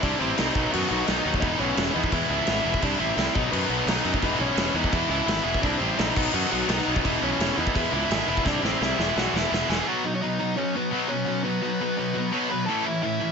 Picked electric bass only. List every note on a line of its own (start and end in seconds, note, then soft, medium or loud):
0.03 0.13 C2 loud
0.21 0.31 A1 medium
0.39 0.49 C2 medium
0.55 0.66 B1 medium
0.74 0.84 F#2 loud
0.91 1.01 B1 loud
1.08 1.18 B1 loud
1.25 1.44 D#2 loud
1.43 1.53 E1 loud
1.60 1.70 B1 loud
1.77 1.88 E1 medium
1.96 2.06 E2 loud
2.12 2.23 E2 loud
2.29 2.40 C#2 loud
2.48 2.58 G#1 loud
2.65 2.75 E1 medium
2.83 2.93 C2 loud
3.00 3.10 A1 medium
3.17 3.27 C2 medium
3.36 3.46 B1 medium
3.53 3.63 F#2 loud
3.69 3.80 B1 loud
3.86 3.97 B1 medium
4.05 4.15 F#2 medium
4.23 4.33 E1 loud
4.40 4.50 B1 loud
4.57 4.68 E1 medium
4.74 4.85 E2 medium
4.93 5.03 E2 loud
5.09 5.20 C#2 loud
5.27 5.38 G#1 loud
5.45 5.56 E1 loud
5.63 5.74 C2 loud
5.81 5.91 A1 medium
5.99 6.10 A#1 loud
6.17 6.27 B1 medium
6.34 6.44 F#2 loud
6.52 6.63 B1 loud
6.68 6.79 B1 loud
6.88 6.98 B1 medium
7.06 7.16 E1 loud
7.22 7.32 B1 loud
7.39 7.50 E1 medium
7.58 7.68 E2 loud
7.75 7.86 E2 loud
7.92 8.03 C#2 loud
8.10 8.21 G#1 loud
8.28 8.39 E1 loud
8.46 8.56 C2 loud
8.63 8.74 A1 medium
8.81 8.92 C2 medium
8.99 9.09 E1 medium
9.16 9.27 B1 loud
9.34 9.44 E1 medium
9.52 9.62 E1 medium
9.69 9.80 E1 medium